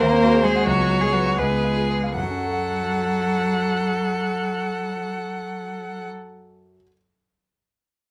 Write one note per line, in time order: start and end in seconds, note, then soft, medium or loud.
0.00 0.66 D#2 medium
0.00 0.45 A#3 loud
0.00 0.44 A#4 medium
0.00 0.66 C5 medium
0.12 0.29 C4 medium
0.23 0.40 F#4 medium
0.34 0.51 G#4 medium
0.43 0.68 G#3 medium
0.43 0.68 G#4 medium
0.43 0.62 C5 medium
0.56 0.67 F#5 medium
0.66 1.36 C#2 medium
0.66 1.03 F#3 loud
0.66 1.03 F#4 medium
0.66 1.40 C#5 medium
0.78 0.97 B3 medium
0.90 1.09 F#4 medium
1.01 1.14 G#3 medium
1.01 1.15 G#4 medium
1.01 1.21 G#4 medium
1.12 1.37 F#3 medium
1.12 1.38 F#4 medium
1.12 1.33 B4 medium
1.26 1.38 F#5 medium
1.38 2.14 C#2 medium
1.38 2.14 G#3 medium
1.38 2.14 G#4 medium
1.38 1.92 B4 medium
1.51 1.71 B3 soft
1.64 1.84 F4 medium
1.77 1.98 G#4 soft
1.89 2.11 B4 soft
2.04 2.16 F5 medium
2.16 6.75 F#2 soft
2.16 6.08 F#3 medium
2.16 6.08 A4 medium
2.16 6.08 F#5 medium
2.23 6.81 F#3 medium
2.30 6.85 C#4 medium
2.37 6.88 F#4 medium
2.44 6.92 A4 soft
2.51 6.95 F#5 soft